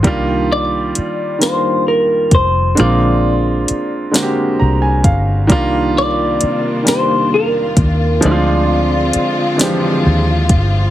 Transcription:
<<
  \new Staff \with { instrumentName = "Clean electric guitar" } { \time 6/8 \key c \minor \tempo 4. = 44 r8 d''4 c''8 bes'8 c''8 | d''2~ d''8 r8 | r8 d''4 c''8 bes'4 | d''2~ d''8 r8 | }
  \new Staff \with { instrumentName = "Grand piano" } { \time 6/8 \key c \minor r2. | r2 bes''16 aes''16 f''8 | r2. | r2. | }
  \new Staff \with { instrumentName = "Grand piano" } { \time 6/8 \key c \minor <ees g bes d' f'>4 r8 <ees g bes d' f'>4 r8 | <d aes bes c' f'>4 r8 <d aes bes c' fis' g'>4 r8 | <ees g bes d' f'>4 r8 <ees g bes d' g'>4 r8 | <f aes c' d' e' f'>4 r8 <e f aes c' d' g'>4 r8 | }
  \new Staff \with { instrumentName = "String section" } { \time 6/8 \key c \minor << { r2. | r2. | f'2.~ | f'2. | } \\ { r2. | r2. | <c ees bes d'>2. | <d aes c'>2. | } >> }
  \new Staff \with { instrumentName = "Fingered electric bass" } { \clef bass \time 6/8 \key c \minor c,4 r4. f,,8 | bes,,4 r4 c,8 g,,8 | c,4 r4. ees,8 | d,4 r4 ees,8 g,,8 | }
  \new DrumStaff \with { instrumentName = "Drums" } \drummode { \time 6/8 <hh bd>4 hh8 <hh sn>4 <hh bd>8 | hh4 hh8 <hh sn>4 <hh bd>8 | <hh bd>4 hh8 <hh sn>4 <hh bd>8 | hh4 hh8 <hh sn>4 <hh bd>8 | }
>>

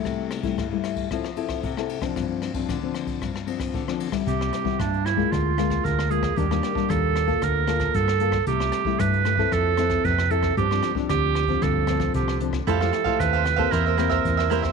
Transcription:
<<
  \new Staff \with { instrumentName = "Cavaquinho" } { \time 4/4 \key c \major \tempo 4 = 114 r1 | r1 | r1 | r1 |
r1 | r1 | <e' a' c'' f''>16 <c'' f''>16 r16 <a' c'' f''>8 <a' c'' f''>16 r16 <a' c'' f''>16 <e' bes' c'' e''>16 <bes' c'' e''>16 <e' bes' c'' e''>16 <bes' c'' e''>8 <bes' c'' e''>16 <e' bes' c'' e''>16 <bes' c'' e''>16 | }
  \new Staff \with { instrumentName = "Clarinet" } { \time 4/4 \key c \major r1 | r1 | g'4 d'8 e'8 f'4 bes'8 aes'8 | g'4 a'4 bes'4 a'4 |
g'4 b'4 a'4 b'8 a'8 | g'4 g'4 a'4 g'8 r8 | a'4 b'4 bes'2 | }
  \new Staff \with { instrumentName = "Nylon-string guitar" } { \time 4/4 \key c \major << { <g a e'>8. <g a e'>8 <g a e'>8. <c' e' a'>16 r16 <c' e' a'>8. <c' e' a'>8 <f c' d'>16~ | <f c' d'>8. <f c' d'>8 <f c' d'>4 r16 <f c' d'>8. <f c' d'>8 <g b e'>16~ | <g b e'>8. <g b e'>4 <aes bes f'>8. <aes bes f'>4 <aes bes f'>8 | <g bes d'>16 <g bes d'>8 <g bes d'>4 <bes f' a'>8. <bes f' a'>4 <bes f' a'>16 r16 |
<g a e'>8. <g a e'>8. <g a e'>16 <c' e' a'>8. <c' e' a'>8. r16 <c' e' a'>8 | <f c' d'>16 <f c' d'>8 <f c' d'>4 <f c' d'>8. <f c' d'>4 <f c' d'>16 r16 | <a e' g'>16 <a e' g'>8 <a e' g'>4 <bes c' g'>8. <bes c' g'>4 <bes c' g'>8 | } \\ { c4 g,4 f4 c4 | g,4 d4 g,4 d4 | c4 g,4 d4 d4 | ees4 bes,4 d4 d4 |
c4 g,4 f4 c4 | g,4 d4 g,4 d4 | f4 c4 e4 e4 | } >> }
  \new Staff \with { instrumentName = "Fingered electric bass" } { \clef bass \time 4/4 \key c \major r1 | r1 | c,8 r8 g,4 d,4 d,4 | ees,8 r8 ees,4 d,4 g,4 |
c,8 r8 g,4 f,4 f,4 | g,8 r8 d,4 d,4 c,4 | f,8 r8 ees,4 e,4 e,4 | }
  \new DrumStaff \with { instrumentName = "Drums" } \drummode { \time 4/4 <bd cymr ss>8 <cymr ss>16 <bd cymr>16 <bd cymr ss>8 <cymr ss>16 <bd cymr>16 <bd cymr ss>16 ss16 cymr16 <bd cymr ss>16 <bd cymr>16 ss16 cymr16 <bd cymr ss>16 | <bd cymr ss>8 <cymr ss>16 <bd cymr>16 <bd cymr ss>8 <cymr ss>16 <bd cymr>16 <bd cymr ss>16 ss16 cymr16 <bd cymr ss>16 <bd cymr>16 ss16 cymr16 <bd cymr ss>16 | <hh bd>16 ss16 <hh ss>16 bd16 <hh bd ss>16 hh16 <hh ss>16 bd16 <hh bd ss>8 <hh ss>16 <hh bd ss>16 <hh bd>16 ss16 hh16 <bd ss>16 | <hh bd>16 ss16 <hh ss>16 bd16 <hh bd ss>8 <hh ss>16 <hh bd>16 <hh bd ss>8 <hh ss>16 <hh bd ss>16 <hh bd>16 ss16 hh16 <bd ss>16 |
<hh bd>16 ss16 <hh ss>16 bd16 <hh bd ss>16 hh16 <hh ss>16 bd16 <hh bd ss>8 <hh ss>16 <hh bd ss>16 <hh bd>16 ss16 hh16 <bd ss>16 | <hh bd>16 ss16 <hh ss>16 bd16 <hh bd ss>8 <hh ss>16 <hh bd>16 <hh bd ss>8 <hh ss>16 <hh bd ss>16 <hh bd>16 ss16 hh16 <bd ss>16 | <hh bd>16 ss16 <hh ss>16 bd16 <hh bd ss>16 hh16 <hh ss>16 bd16 <hh bd ss>8 <hh ss>16 <hh bd ss>16 <hh bd>16 ss16 hh16 <bd ss>16 | }
>>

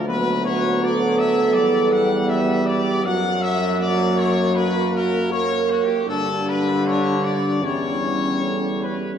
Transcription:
<<
  \new Staff \with { instrumentName = "Trumpet section" } { \time 4/4 \key fis \phrygian \tempo 4 = 79 b'8 cis''8 d''8 e''8 d''8 fis''8 e''8 d''8 | fis''8 e''8 d''8 cis''8 b'8 ais'8 \tuplet 3/2 { cis''8. fis'16 g'8 } | a'8 b'8 cis''8 d''8 cis''4. b'8 | }
  \new Staff \with { instrumentName = "French horn section" } { \time 4/4 \key fis \phrygian fis'4 a'2 g'4 | fis'2 fis'4 ais'4 | d'2 e'8 cis'8 a'8 g'8 | }
  \new Staff \with { instrumentName = "Euphonium" } { \time 4/4 \key fis \phrygian b1~ | b8 r8 ais2. | d'2 cis'2 | }
  \new Staff \with { instrumentName = "Trombone" } { \clef bass \time 4/4 \key fis \phrygian fis2 g2 | fis2.~ fis8 r8 | d2 g2 | }
  \new Staff \with { instrumentName = "Tuba" } { \clef bass \time 4/4 \key fis \phrygian d,2 e,2 | fis,2.~ fis,8 r8 | g,2 e,2 | }
>>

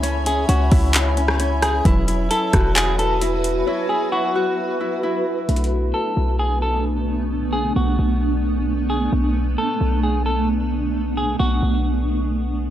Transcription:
<<
  \new Staff \with { instrumentName = "Ambient pad" } { \time 4/4 \key b \dorian \tempo 4 = 132 << { <cis'' gis''>1 | <fis' b'>1~ | <fis' b'>1 | a1~ |
a1~ | a1~ | a1 | } \\ { <e'' b''>1~ | <e'' b''>1~ | <e'' b''>1 | <b d'>1~ |
<b d'>1~ | <b d'>1~ | <b d'>1 | } >> }
  \new Staff \with { instrumentName = "Clean electric guitar" } { \time 4/4 \key b \dorian r8 gis'8 fis'2~ fis'8 gis'8 | r4 a'4 gis'8 a'8 r4 | r8 gis'8 fis'2 r4 | r4 a'4 gis'8 a'8 r4 |
r8 gis'8 fis'2~ fis'8 gis'8 | r4 a'4 gis'8 a'8 r4 | r8 gis'8 fis'2 r4 | }
  \new Staff \with { instrumentName = "Harp" } { \time 4/4 \key b \dorian <cis' e'>8 cis'8 cis'8 e'4 cis'8 cis'4 | e'8 e'8 e'8 fis'4 e'8 e'4 | e'8 e'8 e'8 fis'4 e'8 e'4 | r1 |
r1 | r1 | r1 | }
  \new Staff \with { instrumentName = "Handpan" } { \time 4/4 \key b \dorian << { r1 | b'1 | cis''1 | b'1~ |
b'1~ | b'1~ | b'1 | } \\ { e'1~ | e'1~ | e'1 | d'1~ |
d'1~ | d'1~ | d'1 | } >> }
  \new Staff \with { instrumentName = "Handpan" } { \time 4/4 \key b \dorian b1 | fis1~ | fis1 | a1~ |
a1~ | a1~ | a1 | }
  \new Staff \with { instrumentName = "808-style bass" } { \clef bass \time 4/4 \key b \dorian cis,4 cis,8 cis,2~ cis,8 | e,,4 r8 e,,2~ e,,8 | r1 | b,,4 r8 b,,2~ b,,8~ |
b,,4 b,,8 b,,2~ b,,8 | b,,4 r8 b,,2~ b,,8~ | b,,4 b,,8 b,,2~ b,,8 | }
  \new DrumStaff \with { instrumentName = "Drums" } \drummode { \time 4/4 hh8 hh8 hh8 <hho bd>8 <hc hh>8 hh16 ss16 hh8 <hh ss>8 | <hh bd>8 hh8 hh8 <hh bd ss>8 <hc hh>8 hh8 hh8 hh8 | r4 r4 r4 r4 | \tuplet 3/2 { hh16 hh16 hh16 r16 r16 r16 } r4 r4 r4 |
r4 r4 r4 r4 | r4 r4 r4 r4 | r4 r4 r4 r4 | }
>>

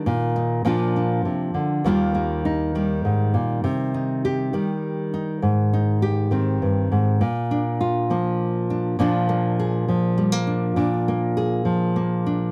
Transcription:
\new Staff \with { instrumentName = "Nylon-string guitar" } { \time 3/4 \key bes \mixolydian \tempo 4 = 101 << { r8 ees'8 <f bes d' f'>8 d'4. | <ees g bes f'>8 bes8 ees'8 g4.~ | g8 ees'8 g'8 g4 ees'8 | r8 ees'8 g'8 c'4. |
r8 d'8 f'8 bes4 d'8 | <f bes d' f'>8 bes8 aes'4 g16 bes16 d'8 | d'8 bes8 aes'4 bes8 d'8 | } \\ { <bes, ees>4 bes,4 c8 d8 | ees,4. ees8 aes,8 bes,8 | c4. ees4. | aes,4. ees8 g,8 aes,8 |
bes,4. f4. | bes,4. f4. | bes,4. f4. | } >> }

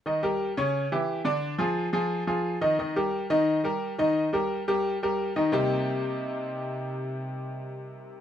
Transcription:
\new Staff \with { instrumentName = "Upright piano" } { \time 4/4 \key c \minor \tempo 4 = 175 <ees ees' ees''>8 <g g' bes'>4 <des des' des''>4 <e e' g'>4 <d d' d''>8~ | <d d' d''>8 <f f' aes'>4 <f f' aes'>4 <f f' aes'>4 <ees ees' ees''>8 | <ees ees' ees''>8 <g g' bes'>4 <ees ees' ees''>4 <g g' bes'>4 <ees ees' ees''>8~ | <ees ees' ees''>8 <g g' bes'>4 <g g' bes'>4 <g g' bes'>4 <ees ees' ees''>8 |
<c g bes c' ees' g'>1~ | <c g bes c' ees' g'>1 | }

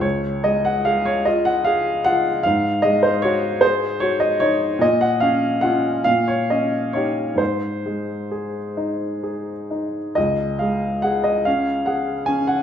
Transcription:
\new Staff \with { instrumentName = "Upright piano" } { \time 6/8 \key des \major \tempo 4. = 49 << { des''8 ees''16 ges''16 f''16 des''16 ees''16 ges''16 f''8 ges''8 | f''8 ees''16 c''16 des''8 c''8 des''16 ees''16 des''8 | ees''16 ges''16 f''8 ges''8 f''16 des''16 ees''8 des''8 | c''2~ c''8 r8 |
ees''8 f''8 ges''16 ees''16 f''8 ges''8 aes''16 ges''16 | } \\ { des,8 aes8 aes'8 f'8 aes'8 f'8 | aes,8 aes8 ges'8 aes'8 ges'8 ees'8 | bes,8 des'8 <des' f'>8 bes,8 des'8 <ees' g'>8 | aes,8 aes8 aes'8 ees'8 aes'8 ees'8 |
des,8 aes8 aes'8 des'8 aes'8 des'8 | } >> }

